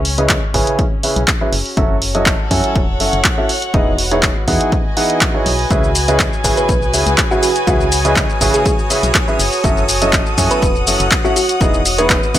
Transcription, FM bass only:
0.00 0.38 C#2 medium
0.54 0.64 G#1 medium
1.16 1.26 B1 medium
1.53 1.63 F#1 medium
1.77 2.35 F#1 medium
2.51 2.61 F#2 medium
2.76 3.02 E1 loud
3.00 3.10 F#1 medium
3.13 3.22 F#1 medium
3.74 4.32 E1 medium
4.48 4.58 E2 medium
5.46 5.66 B1 medium
5.71 6.28 C#2 medium
6.44 6.55 G#1 medium
6.69 6.95 B1 medium
6.94 7.04 C#2 medium
7.07 7.16 C#2 medium
7.67 8.25 C#2 loud
8.41 8.51 G#1 medium
9.03 9.12 B1 medium
9.39 9.50 F#1 medium
9.64 10.22 F#1 medium
10.38 10.48 F#2 medium
10.62 10.89 E1 medium
10.87 10.97 F#1 medium
11.00 11.09 F#1 medium
11.61 12.19 E1 loud
12.35 12.39 E2 medium

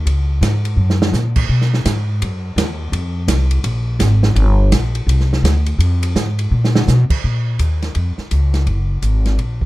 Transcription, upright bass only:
0.06 0.41 C#2 medium
0.41 0.76 G#2 medium
0.76 1.12 F#2 medium
1.13 1.48 A#2 loud
1.49 1.84 B2 medium
1.86 2.20 G#2 medium
2.22 2.56 F#2 medium
2.56 2.91 D#2 medium
2.92 3.27 F2 medium
3.28 3.63 C2 medium
3.64 3.99 A#1 medium
3.99 4.35 G#1 medium
4.35 4.71 G1 loud
4.72 5.06 A#1 medium
5.07 5.42 C2 medium
5.43 5.78 D2 medium
5.79 6.14 F2 medium
6.16 6.50 G#2 medium
6.51 6.86 A#2 medium
6.88 7.08 B2 medium
7.10 muted upright bass stroke soft
7.24 7.59 A#2 medium
7.59 7.94 D#2 medium
7.96 8.16 F2 medium
8.18 muted upright bass stroke soft
8.31 8.66 C#2 medium
8.66 9.02 F#1 medium
9.02 9.37 G#1 medium
9.38 9.65 A#1 medium

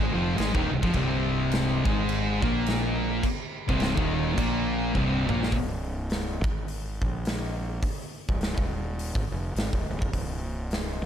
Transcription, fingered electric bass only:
0.00 0.14 G#1 loud
0.15 0.36 F1 loud
0.38 0.54 G#1 medium
0.55 0.71 D#1 loud
0.71 0.82 C1 medium
0.84 0.94 F1 loud
0.95 1.82 C1 medium
1.86 2.39 G#1 medium
2.43 3.19 A#1 medium
3.69 3.96 C1 loud
3.98 4.35 D#1 medium
4.38 4.91 A#1 loud
4.95 5.27 C1 loud
5.29 5.51 A#1 loud
5.52 6.40 C1 medium
6.45 6.98 G#1 medium
7.01 7.79 A#1 medium
8.30 8.56 C1 medium
8.58 9.11 D#1 medium
9.15 9.31 G#1 medium
9.31 9.53 F1 medium
9.55 9.71 G#1 medium
9.74 9.89 D#1 medium
9.90 10.00 C1 medium
10.02 10.13 F1 medium
10.13 11.01 C1 medium

